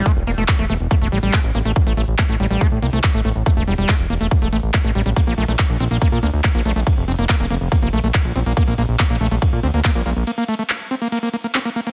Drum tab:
RD |----------------|----------------|----------------|x---x---x---x---|
HH |xxo-xxoxxxoxxxox|xxoxxxoxxxoxxxox|xxoxxxoxxxoxxxox|xxoxxxoxxxoxxxox|
CP |----x-------x---|----x-------x---|----x-------x---|----x-------x---|
BD |o---o---o---o---|o---o---o---o---|o---o---o---o---|o---o---o---o---|

RD |x---x---x---x---|x---x---x---x---|x---x---x---x---|
HH |xxoxxxoxxxoxxxox|xxoxxxoxxxoxxxox|xxoxxxoxxxoxxxox|
CP |----x-------x---|----x-------x---|----x-------x---|
BD |o---o---o---o---|o---o---o---o---|----------------|